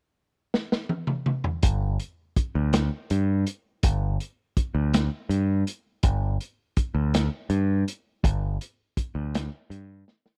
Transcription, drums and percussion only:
0, 0, Header, 1, 2, 480
1, 0, Start_track
1, 0, Tempo, 732601
1, 1080, Time_signature, 6, 3, 24, 8
1, 6795, End_track
2, 0, Start_track
2, 0, Title_t, "Drums"
2, 354, Note_on_c, 9, 38, 64
2, 419, Note_off_c, 9, 38, 0
2, 473, Note_on_c, 9, 38, 73
2, 539, Note_off_c, 9, 38, 0
2, 585, Note_on_c, 9, 48, 74
2, 651, Note_off_c, 9, 48, 0
2, 702, Note_on_c, 9, 47, 80
2, 768, Note_off_c, 9, 47, 0
2, 826, Note_on_c, 9, 47, 86
2, 891, Note_off_c, 9, 47, 0
2, 944, Note_on_c, 9, 43, 92
2, 1010, Note_off_c, 9, 43, 0
2, 1065, Note_on_c, 9, 42, 90
2, 1069, Note_on_c, 9, 36, 99
2, 1131, Note_off_c, 9, 42, 0
2, 1135, Note_off_c, 9, 36, 0
2, 1308, Note_on_c, 9, 42, 60
2, 1373, Note_off_c, 9, 42, 0
2, 1549, Note_on_c, 9, 42, 65
2, 1550, Note_on_c, 9, 36, 71
2, 1615, Note_off_c, 9, 36, 0
2, 1615, Note_off_c, 9, 42, 0
2, 1788, Note_on_c, 9, 42, 88
2, 1793, Note_on_c, 9, 38, 102
2, 1854, Note_off_c, 9, 42, 0
2, 1859, Note_off_c, 9, 38, 0
2, 2032, Note_on_c, 9, 42, 62
2, 2097, Note_off_c, 9, 42, 0
2, 2270, Note_on_c, 9, 42, 68
2, 2336, Note_off_c, 9, 42, 0
2, 2509, Note_on_c, 9, 42, 91
2, 2513, Note_on_c, 9, 36, 97
2, 2575, Note_off_c, 9, 42, 0
2, 2578, Note_off_c, 9, 36, 0
2, 2754, Note_on_c, 9, 42, 63
2, 2820, Note_off_c, 9, 42, 0
2, 2993, Note_on_c, 9, 36, 73
2, 2993, Note_on_c, 9, 42, 66
2, 3058, Note_off_c, 9, 36, 0
2, 3058, Note_off_c, 9, 42, 0
2, 3234, Note_on_c, 9, 42, 84
2, 3239, Note_on_c, 9, 38, 100
2, 3300, Note_off_c, 9, 42, 0
2, 3305, Note_off_c, 9, 38, 0
2, 3476, Note_on_c, 9, 42, 59
2, 3542, Note_off_c, 9, 42, 0
2, 3716, Note_on_c, 9, 42, 59
2, 3781, Note_off_c, 9, 42, 0
2, 3950, Note_on_c, 9, 42, 81
2, 3955, Note_on_c, 9, 36, 105
2, 4016, Note_off_c, 9, 42, 0
2, 4020, Note_off_c, 9, 36, 0
2, 4197, Note_on_c, 9, 42, 58
2, 4262, Note_off_c, 9, 42, 0
2, 4433, Note_on_c, 9, 42, 58
2, 4436, Note_on_c, 9, 36, 77
2, 4499, Note_off_c, 9, 42, 0
2, 4501, Note_off_c, 9, 36, 0
2, 4678, Note_on_c, 9, 42, 79
2, 4683, Note_on_c, 9, 38, 96
2, 4743, Note_off_c, 9, 42, 0
2, 4748, Note_off_c, 9, 38, 0
2, 4913, Note_on_c, 9, 42, 59
2, 4978, Note_off_c, 9, 42, 0
2, 5162, Note_on_c, 9, 42, 64
2, 5228, Note_off_c, 9, 42, 0
2, 5398, Note_on_c, 9, 36, 108
2, 5403, Note_on_c, 9, 42, 81
2, 5464, Note_off_c, 9, 36, 0
2, 5468, Note_off_c, 9, 42, 0
2, 5642, Note_on_c, 9, 42, 66
2, 5708, Note_off_c, 9, 42, 0
2, 5878, Note_on_c, 9, 36, 73
2, 5878, Note_on_c, 9, 42, 65
2, 5943, Note_off_c, 9, 36, 0
2, 5944, Note_off_c, 9, 42, 0
2, 6123, Note_on_c, 9, 42, 92
2, 6129, Note_on_c, 9, 38, 108
2, 6189, Note_off_c, 9, 42, 0
2, 6194, Note_off_c, 9, 38, 0
2, 6364, Note_on_c, 9, 42, 67
2, 6430, Note_off_c, 9, 42, 0
2, 6604, Note_on_c, 9, 38, 59
2, 6669, Note_off_c, 9, 38, 0
2, 6720, Note_on_c, 9, 38, 79
2, 6786, Note_off_c, 9, 38, 0
2, 6795, End_track
0, 0, End_of_file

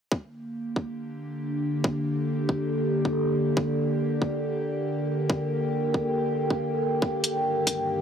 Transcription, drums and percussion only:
0, 0, Header, 1, 2, 480
1, 0, Start_track
1, 0, Key_signature, -2, "minor"
1, 0, Tempo, 431655
1, 129, Time_signature, 4, 2, 24, 8
1, 8913, End_track
2, 0, Start_track
2, 0, Title_t, "Drums"
2, 129, Note_on_c, 9, 36, 109
2, 240, Note_off_c, 9, 36, 0
2, 848, Note_on_c, 9, 36, 55
2, 960, Note_off_c, 9, 36, 0
2, 2049, Note_on_c, 9, 36, 109
2, 2160, Note_off_c, 9, 36, 0
2, 2768, Note_on_c, 9, 36, 60
2, 2879, Note_off_c, 9, 36, 0
2, 3393, Note_on_c, 9, 36, 58
2, 3504, Note_off_c, 9, 36, 0
2, 3968, Note_on_c, 9, 36, 109
2, 4080, Note_off_c, 9, 36, 0
2, 4688, Note_on_c, 9, 36, 61
2, 4800, Note_off_c, 9, 36, 0
2, 5889, Note_on_c, 9, 36, 108
2, 6000, Note_off_c, 9, 36, 0
2, 6609, Note_on_c, 9, 36, 61
2, 6720, Note_off_c, 9, 36, 0
2, 7233, Note_on_c, 9, 36, 60
2, 7344, Note_off_c, 9, 36, 0
2, 7808, Note_on_c, 9, 36, 108
2, 7919, Note_off_c, 9, 36, 0
2, 8048, Note_on_c, 9, 42, 70
2, 8160, Note_off_c, 9, 42, 0
2, 8528, Note_on_c, 9, 36, 58
2, 8528, Note_on_c, 9, 42, 72
2, 8639, Note_off_c, 9, 36, 0
2, 8639, Note_off_c, 9, 42, 0
2, 8913, End_track
0, 0, End_of_file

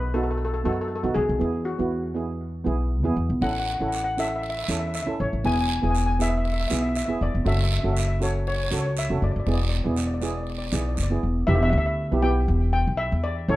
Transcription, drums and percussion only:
0, 0, Header, 1, 2, 480
1, 0, Start_track
1, 0, Tempo, 503778
1, 1335, Time_signature, 4, 2, 24, 8
1, 12922, End_track
2, 0, Start_track
2, 0, Title_t, "Drums"
2, 3259, Note_on_c, 9, 74, 60
2, 3355, Note_off_c, 9, 74, 0
2, 3739, Note_on_c, 9, 73, 59
2, 3834, Note_off_c, 9, 73, 0
2, 3985, Note_on_c, 9, 73, 63
2, 4080, Note_off_c, 9, 73, 0
2, 4225, Note_on_c, 9, 74, 61
2, 4320, Note_off_c, 9, 74, 0
2, 4465, Note_on_c, 9, 73, 65
2, 4560, Note_off_c, 9, 73, 0
2, 4705, Note_on_c, 9, 73, 69
2, 4801, Note_off_c, 9, 73, 0
2, 5188, Note_on_c, 9, 74, 66
2, 5284, Note_off_c, 9, 74, 0
2, 5665, Note_on_c, 9, 73, 70
2, 5761, Note_off_c, 9, 73, 0
2, 5909, Note_on_c, 9, 73, 72
2, 6004, Note_off_c, 9, 73, 0
2, 6147, Note_on_c, 9, 74, 65
2, 6243, Note_off_c, 9, 74, 0
2, 6388, Note_on_c, 9, 73, 70
2, 6483, Note_off_c, 9, 73, 0
2, 6627, Note_on_c, 9, 73, 71
2, 6722, Note_off_c, 9, 73, 0
2, 7111, Note_on_c, 9, 74, 72
2, 7207, Note_off_c, 9, 74, 0
2, 7590, Note_on_c, 9, 73, 68
2, 7685, Note_off_c, 9, 73, 0
2, 7828, Note_on_c, 9, 73, 68
2, 7924, Note_off_c, 9, 73, 0
2, 8071, Note_on_c, 9, 74, 65
2, 8167, Note_off_c, 9, 74, 0
2, 8306, Note_on_c, 9, 73, 61
2, 8401, Note_off_c, 9, 73, 0
2, 8543, Note_on_c, 9, 73, 65
2, 8638, Note_off_c, 9, 73, 0
2, 9020, Note_on_c, 9, 74, 59
2, 9115, Note_off_c, 9, 74, 0
2, 9495, Note_on_c, 9, 73, 67
2, 9590, Note_off_c, 9, 73, 0
2, 9733, Note_on_c, 9, 73, 65
2, 9828, Note_off_c, 9, 73, 0
2, 9974, Note_on_c, 9, 74, 61
2, 10069, Note_off_c, 9, 74, 0
2, 10212, Note_on_c, 9, 73, 72
2, 10307, Note_off_c, 9, 73, 0
2, 10454, Note_on_c, 9, 73, 70
2, 10549, Note_off_c, 9, 73, 0
2, 12922, End_track
0, 0, End_of_file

